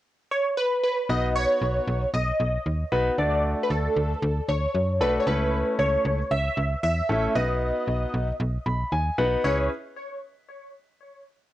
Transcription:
0.31 C#5
0.57 B4
0.83 B4
1.09 B1 B3 D#4 F#4 B4 D#5
1.36 C#5
1.61 B1
1.87 B1
2.14 B1 D#5
2.40 B1
2.66 D#2
2.92 B1 B3 D#4 F#4 B4
3.18 D2 A3 D4 F#4 A4 D5
3.63 B4
3.70 D2 A4
3.96 D2
4.22 D2
4.49 D2 C#5
4.75 F#2
5.01 B1 A3 D4 F#4 A4 B4
5.20 C#5
5.27 C#2 A3 C#4 E4 A4 B4
5.79 C#2 C#5
6.05 C#2
6.31 C#2 E5
6.57 C#2
6.83 E2 E5
7.09 A1 A3 C#4 E4 A4
7.35 B1 B3 D#4 F#4 B4 D#5
7.88 B1
8.14 B1
8.40 B1
8.66 B1 B5
8.92 D#2 G#5
9.18 B1 B3 D#4 F#4 B4 F#5
9.44 C#2 C#4 E4 G#4 B4 C#5

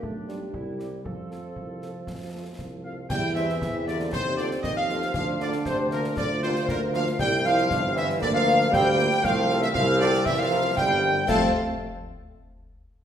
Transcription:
0.02 B1 A3 D4, concert bass drum
0.28 G3 D4 F4 D5, snare
0.53 C2 E4, concert bass drum
0.79 G3 C4 E4 G4 A#4, snare
1.04 F2 F3 A4, concert bass drum
1.31 A3 C4 F4 A4, snare
1.56 C2, concert bass drum
1.82 A3 C4 F4 A4, snare
2.07 F2, concert bass drum, snare
2.34 A3 C4 F4 A4
2.58 C2, concert bass drum, snare
2.84 F3 A3 C4 F4 A4 F5
3.09 E2 G3 E4 G5, concert bass drum, snare, crash
3.35 E3 G3 C4 E5, snare
3.49 snare
3.61 E2 C4, concert bass drum, snare
3.86 D3 G3 A#3 C4 D5, snare
4.00 snare
4.12 D#2 C3 C4 C5, concert bass drum, snare
4.37 D3 A3 C4 F4 D5, snare
4.51 snare
4.63 D#2 D#3 D#5, concert bass drum, snare
4.76 F3 F5
4.89 A3 C4 F4, snare
5.02 snare
5.14 D2 F3 D4 F5, concert bass drum, snare, crash
5.40 D3 A#3 D4 F4 D5, snare
5.52 snare
5.65 D2 C3 C5, concert bass drum, snare
5.91 A#2 A#3 D4 F4 A#4, snare
6.04 snare
6.17 D2 D3 F4 D5, concert bass drum, snare
6.42 C3 A#3 D4 F4 C5, snare
6.55 snare
6.68 D2 A#2 A#4, concert bass drum, snare
6.94 F3 A#3 D4 F4 F5, snare
7.07 snare
7.19 C2 G3 E4 G5, concert bass drum, snare, crash
7.45 F3 G3 E4 C5 F5, snare
7.58 snare
7.70 G1 D4, concert bass drum, snare
7.95 E3 G3 C4 E4 C5 E5, snare
8.10 snare
8.20 D2 D3 A#3 D5, concert bass drum, snare
8.33 F3 F5
8.46 A#3 F4 A#4, snare
8.61 snare
8.71 D2 G3 C4 G5, concert bass drum, snare
8.97 A#3 F4 A#4, snare
9.11 snare
9.23 C2 F3 A3 F5, concert bass drum, snare, crash
9.49 C4 F4 A4, snare
9.62 E3 E5, snare
9.74 C2 F3 C4 F5, concert bass drum, snare
9.99 D3 C4 F4 A4 D5, snare
10.14 snare
10.25 C2 E3 E5, concert bass drum, snare
10.38 F3 F5
10.51 C4 E4 A#4
10.76 G1 G3 E4 G5, concert bass drum, snare
11.03 C4 E4 A#4
11.26 F2 A3 C4 F4 A4 F5 A5, concert bass drum, snare, crash

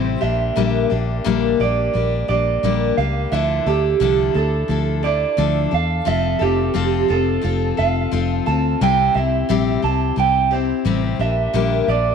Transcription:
Already playing: A1 C3 G3 C4 E4 G4 C5
0.21 A#1 G3 A#3 D4 G4 E5
0.56 A#1 A#2 D3 G3 A#3 D4 G4
0.90 A#1 G3 A#3 D4 G4
1.24 A#1 A#2 D3 G3 A#3 D4 G4
1.60 A#1 G3 A#3 D4 G4 D5
1.93 A#1 G3 A#3 D4 G4
2.28 A#1 G3 A#3 D4 G4 D5
2.63 A#1 A#2 D3 G3 A#3 D4 G4
2.97 C#2 G3 A#3 D4 G4 F5
3.32 D2 D3 F3 D4 E4 A4 E5
3.66 D2 D4 E4 G4 A4
4.00 C2 D3 F3 D4 E4 A4
4.34 D2 D4 E4 A4
4.68 D2 F3 D4 E4 A4
5.03 D4 E4 A4 D5
5.37 D2 D3 F3 D4 E4 A4
5.71 E2 D4 A4 F5
6.05 F1 F3 C4 F4 A4 E5
6.39 F1 C4 F4 G4 A4
6.74 F1 F3 C4 F4 A4
7.08 F1 C4 F4 A4
7.41 F1 F3 C4 F4 A4
7.77 F1 C4 F4 A4 F5
8.11 F1 F3 C4 F4 A4
8.46 D2 C4 F4 A4 A5
8.81 C2 C3 G3 C4 E4 G4 G5
9.14 C2 C4 E4 G4 E5
9.49 A#1 C3 G3 C4 E4 G4
9.82 C2 C4 E4 G4 A5
10.16 C2 G3 C4 E4 G4 G5
10.51 C4 E4 G4 C5
10.85 A1 C3 G3 C4 E4 G4
11.19 A#1 G3 A#3 D4 G4 E5
11.53 A#1 A#2 D3 G3 A#3 D4 G4
11.88 A#1 G3 A#3 D4 G4 D5

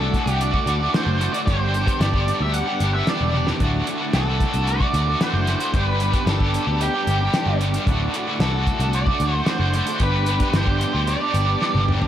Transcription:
Already playing: C2 D2 A2 D4 A4 D5 F#5 A5 D6
0.01 D3 A3 F#4
0.14 kick, closed hi-hat
0.26 C2 A3 F#4, closed hi-hat
0.30 D3 G4
0.41 D5, closed hi-hat
0.54 D3 A3 F#4, kick
0.66 D2 A2 D3 A3 F#4, closed hi-hat
0.80 D3 A3 F#4
0.94 D2 A2 D3 A3 F#4 C5, snare, closed hi-hat
1.07 F#1
1.20 A2 D3 A3 F#4, closed hi-hat
1.33 D3 A3 F#4 D5, closed hi-hat
1.46 G1 G2 D3 G3 B3 D4 G4 C5 B5, kick, closed hi-hat
1.50 G4
1.73 G3 B3 D4 G4, closed hi-hat
1.86 G3 B3 D4 G4, kick, closed hi-hat
2.00 G1 G2 D3 G3 B3 D4 G4 D5, snare, closed hi-hat
2.13 G3 B3 D4 G4, kick
2.28 closed hi-hat
2.40 D2 G3 B3 D4 G4 E5
2.54 F#5, closed hi-hat
2.67 G3 B3 D4 G4
2.80 G1 G3 B3 D4, closed hi-hat
2.85 G4
2.94 G3 B3 D4 G4 E5
3.07 G2 D3 G3 B3 D4 G4 D5, snare, closed hi-hat
3.21 E1
3.34 G3 B3 D4 G4, high tom
3.47 G3 B3 D4 G4, snare
3.60 D1 D2 A2 D3 A3 F#4 F#5 A5, kick, closed hi-hat
3.87 A2 D3 A3 F#4, closed hi-hat
4.00 D3 A3 F#4
4.13 C2 D2 A2 D3 A3 F#4 A4, snare, closed hi-hat
4.26 D3 A3 F#4
4.40 kick, closed hi-hat
4.53 C2 D3 A3 F#4, closed hi-hat
4.67 D5, closed hi-hat
4.80 D3 A3 F#4, kick
4.94 D2 A2 D3 A3 F#4, closed hi-hat
5.07 D3 A3 F#4
5.20 D2 A2 D3 A3 F#4 C5, snare, closed hi-hat
5.34 F#1
5.47 A2 D3 A3 F#4, snare, closed hi-hat
5.60 D3 A3 F#4, closed hi-hat
5.73 G1 G2 D3 G3 B3 D4 G4 B4 G5 B5, kick, closed hi-hat
6.00 G3 B3 D4 G4, closed hi-hat
6.14 G3 B3 D4 G4, kick, closed hi-hat
6.26 G1 G2 D3 G3 B3 D4 A4, snare, closed hi-hat
6.30 G4
6.40 G3 B3 D4 G4, kick
6.54 closed hi-hat
6.67 D2 G3 B3 D4 G4
6.81 G4, closed hi-hat
6.94 G3 B3 D4 G4
7.07 G1 G3 B3 D4 G4, closed hi-hat
7.21 G3 B3 D4 G4
7.34 G2 D3 G3 B3 D4, snare, closed hi-hat
7.38 G4
7.46 G1
7.61 G3 B3 D4, closed hi-hat
7.65 G4
7.74 B3 D4 G4, closed hi-hat
7.78 G3
7.86 D1 D2 A2 D3 A3 D5 F#5 A5, kick, closed hi-hat
7.91 F#4
8.14 A2 D3 A3 F#4, closed hi-hat
8.28 D3 A3 F#4
8.40 C2 D2 A2 D3 A3 A4, snare, closed hi-hat
8.44 F#4
8.54 D3 A3 F#4
8.67 kick, closed hi-hat
8.80 C2 A3 F#4, closed hi-hat
8.85 D3
8.93 D5, closed hi-hat
9.07 A3 F#4, kick
9.12 D3
9.20 D2 A2 D3 A3 F#4, closed hi-hat
9.35 D3 A3 F#4
9.46 D2 A2 D3 A3 F#4 C5, snare, closed hi-hat
9.60 F#1
9.74 A2 D3 A3 F#4, closed hi-hat
9.87 D3 A3 F#4, closed hi-hat
10.00 G1 G2 D3 G3 B3 D4 G4 B4 G5 B5 D6, kick, closed hi-hat
10.26 G3 B3 D4 G4, closed hi-hat
10.40 G3 B3 D4 G4, kick, closed hi-hat
10.53 G1 G2 D3 G3 B3 D4 G4 C5, snare, closed hi-hat
10.67 G3 B3 D4 G4, kick
10.81 closed hi-hat
10.94 D2 G3 B3 D4 G4
11.07 D5, closed hi-hat
11.20 G3 B3 D4 G4
11.33 G1 G3 B3 D4 G4, closed hi-hat
11.47 G3 B3 D4 G4
11.60 G2 D3 G3 B3 D4 G4, snare
11.75 G1, high tom
11.87 G3 B3 D4 G4, mid tom
12.01 G3 B3 D4 G4, floor tom

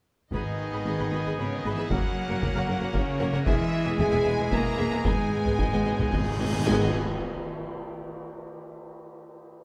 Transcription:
0.31 G#1 G#2 D#3 B3 D#4 G#4 B4 D#5 G#5 B5, taiko
0.73 G#1 B3 G#4 B4 B5
0.85 G#1 B3 G#4 B4 B5
0.99 G#1 B3 G#4 B4 B5
1.11 G#1 B3 G#4 B4 B5
1.25 G#1 B3 G#4 B4 B5
1.37 G#1 C#3 B3 C#4 G#4 B4 C#5 B5
1.55 D#3 D#4 D#5
1.64 G#1 B3 G#4 B4 B5
1.71 E3 E4 E5
1.77 G#1 B3 G#4 B4 B5
1.89 F#1 C#3 F#3 A#3 C#4 F#4 A#4 C#5 F#5, taiko
2.29 F#1 A#3 A#4 C#5 F#5
2.41 F#1 A#3 A#4 C#5 F#5, taiko
2.55 F#1 A#3 A#4 C#5 F#5
2.68 F#1 A#3 A#4 C#5 F#5
2.81 F#1 A#3 A#4 C#5 F#5
2.93 F#1 C#3 A#3 C#4 A#4 C#5 F#5, taiko
3.19 F#1 A#3 A#4 C#5 F#5
3.33 F#1 A#3 A#4 C#5 F#5
3.45 E1 E3 G#3 B3 E4 G#4 E5 G#5, taiko
3.84 E1 B3 G#4 E5 G#5
3.97 E1 G#3 B3 G#4 E5 G#5, taiko
4.11 E1 B3 G#4 E5 G#5
4.23 E1 B3 G#4 E5 G#5
4.38 E1 B3 G#4 E5 G#5
4.50 E1 A#3 B3 G#4 A#4 E5 G#5 A#5, taiko
4.77 E1 B3 G#4 E5 G#5
4.90 E1 B3 G#4 E5 G#5
5.04 G#1 G#2 D#3 G#3 B3 D#4 G#4 D#5 G#5, taiko, cymbal swell
5.13 G#2
5.21 G#2
5.29 G#2
5.37 G#2
5.44 G#1 G#2 B3 G#4 D#5 G#5, taiko low
5.52 G#2
5.59 G#1 G#2 B3 G#4 D#5 G#5, taiko
5.68 G#2
5.72 G#1 G#2 B3 G#4 D#5 G#5
5.82 G#1 G#2 B3 D#5 G#5
5.87 G#1 G#4
5.91 G#2
5.97 G#1 G#2 B3 G#4 D#5 G#5, taiko low
6.07 G#2 D#5 G#5
6.12 G#1 G#2 B3 G#4, taiko
6.21 G#2
6.29 G#2
6.36 G#1 G#2 D#5 G#5
6.41 G#1 G#2 B3 G#4
6.52 G#1 G#2 B3 G#4 D#5 G#5
6.59 G#2
6.65 G#1 G#2 D#3 G#3 B3 D#4 G#4 D#5 G#5, tam-tam, impact

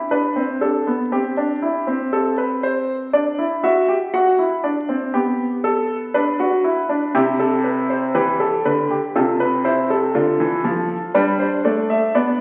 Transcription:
Already playing: E4
0.11 D4 B4
0.36 C4
0.61 D4 A4
0.87 B3
1.12 C4 G4
1.37 D4
1.62 E4
1.87 C4
2.13 A4
2.38 B4
2.63 C5
3.13 D4 D5
3.39 E4
3.64 F#4 E5
3.88 G4
4.14 F#4 F#5
4.39 E4
4.64 D4 D5
4.89 C4
5.14 B3 G4
5.64 A4
6.14 D4 B4
6.40 F#4
6.64 E4
6.89 D4
7.15 C3 E4 G4
7.39 A4
7.64 B4
7.90 C5
8.15 E3 G4 B4
8.40 A4
8.65 D3 B4
8.91 G4
9.16 C3 F4 A4
9.40 B4
9.65 E4 C5
9.90 A4
10.15 D3 F4
10.40 E3
10.64 F3
11.14 G3 D4 B4
11.40 C5
11.65 A3 D5
11.90 E5
12.15 B3 D5

